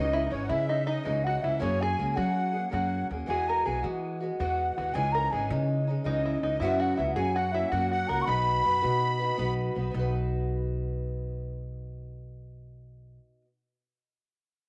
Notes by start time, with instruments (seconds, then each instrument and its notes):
Already playing: upright bass C#2, steel-string acoustic guitar C#3 E3 G#3 C#4 D#4, five-string banjo D#4, flute D#5, accordion D#5
0.13 five-string banjo E4, flute E5
0.27 steel-string acoustic guitar E3, five-string banjo C#4 D#4
0.31 upright bass G#1, steel-string acoustic guitar G#3 C#4 D#4, flute C#5, accordion C#5
0.43 accordion F#5
0.48 upright bass C#3, steel-string acoustic guitar C#3 E3 G#3 C#4, five-string banjo E4, flute E5, accordion E5
0.68 five-string banjo D#4, flute D#5
0.86 steel-string acoustic guitar C#4 D#4, five-string banjo D#4, flute D#5, accordion D#5
0.90 steel-string acoustic guitar G#3
1.03 upright bass C#2, steel-string acoustic guitar C#3 E3 G#3 C#4 D#4, five-string banjo D#4, flute D#5, accordion D#5
1.24 five-string banjo F#4, flute F#5, accordion F#5
1.41 upright bass C#2, steel-string acoustic guitar E3 G#3 C#4, five-string banjo E4, flute E5, accordion E5
1.45 steel-string acoustic guitar D#4
1.59 upright bass F#2, steel-string acoustic guitar F#3 A#3 C#4 G#4, five-string banjo C#4, flute C#5, accordion C#5
1.81 five-string banjo G#4, flute G#5, accordion G#5
1.98 upright bass C#2, steel-string acoustic guitar F#3 A#3 C#4 G#4
2.11 accordion G#5
2.16 upright bass F#3, steel-string acoustic guitar F#3 A#3 C#4 G#4, five-string banjo F#4, flute F#5, accordion F#5
2.53 steel-string acoustic guitar A#3 C#4 G#4
2.70 upright bass F#2, steel-string acoustic guitar F#3 A#3 C#4 G#4, flute F#5, accordion F#5
2.74 five-string banjo F#4
3.09 upright bass D#2, steel-string acoustic guitar F#3 A#3 C#4 G#4
3.26 upright bass E2, steel-string acoustic guitar E3 G#3 B3 F#4, five-string banjo G#4, flute G#5, accordion G#5
3.49 five-string banjo A#4, flute A#5
3.64 upright bass B1, steel-string acoustic guitar E3 G#3 B3 F#4, five-string banjo G#4, accordion G#5, flute G#5
3.83 upright bass E3, steel-string acoustic guitar E3 G#3 B3 F#4
4.20 steel-string acoustic guitar G#3 B3 F#4
4.38 upright bass E2, steel-string acoustic guitar E3 G#3 B3 F#4, five-string banjo F#4, flute F#5, accordion F#5
4.75 upright bass D#2, steel-string acoustic guitar E3 G#3 B3 F#4, five-string banjo F#4, flute F#5, accordion F#5
4.93 upright bass C#2, steel-string acoustic guitar C#3 E3 G#3 C#4 D#4, five-string banjo G#4, flute G#5, accordion G#5
5.12 five-string banjo A#4, flute A#5, accordion A#5
5.31 upright bass G#1, steel-string acoustic guitar E3 G#3 C#4 D#4, five-string banjo G#4, flute G#5, accordion G#5
5.50 upright bass C#3, steel-string acoustic guitar C#3 E3 G#3 C#4 D#4
5.87 steel-string acoustic guitar G#3 C#4 D#4
6.04 upright bass C#2, steel-string acoustic guitar C#3 E3 G#3 C#4 D#4, five-string banjo D#4, flute D#5, accordion D#5
6.25 five-string banjo E4
6.41 upright bass C#2, steel-string acoustic guitar E3 G#3 C#4 D#4, five-string banjo D#4, flute D#5, accordion D#5
6.59 upright bass F#2, steel-string acoustic guitar F#2 C#3 F#3 B3 C#4 F#4, five-string banjo E4, flute E5, accordion E5
6.80 five-string banjo F#4, accordion F#5, flute F#5
6.97 upright bass C#2, steel-string acoustic guitar F#3 B3 C#4 F#4, five-string banjo E4, accordion E5, flute E5
7.14 upright bass F#2, steel-string acoustic guitar A#3 C#4 F#4, five-string banjo G#4, flute G#5, accordion G#5
7.19 steel-string acoustic guitar F#3
7.35 five-string banjo F#4, flute F#5, accordion F#5
7.52 steel-string acoustic guitar C#4 F#4, five-string banjo E4, flute E5, accordion E5
7.56 steel-string acoustic guitar A#3
7.69 upright bass F#2, steel-string acoustic guitar F#3 A#3, five-string banjo F#4, flute F#5, accordion F#5
7.73 steel-string acoustic guitar C#4 F#4
7.89 five-string banjo F#4, flute F#5, accordion F#5
8.08 upright bass C#2, steel-string acoustic guitar F#3 A#3 C#4, five-string banjo A#4, flute A#5
8.12 steel-string acoustic guitar F#4
8.21 flute B5 C#6
8.27 upright bass B1, steel-string acoustic guitar B3 D#4 F#4 B4, five-string banjo B4, accordion B5
8.64 upright bass F#2, steel-string acoustic guitar B3 D#4 F#4 B4
8.82 upright bass B2, steel-string acoustic guitar B3 D#4 F#4 B4
9.20 steel-string acoustic guitar D#4 F#4 B4
9.37 upright bass B1, steel-string acoustic guitar B3 D#4 F#4 B4
9.75 upright bass B1, steel-string acoustic guitar B3 D#4 F#4 B4
9.91 upright bass B1, steel-string acoustic guitar B3 D#4
9.97 steel-string acoustic guitar F#4 B4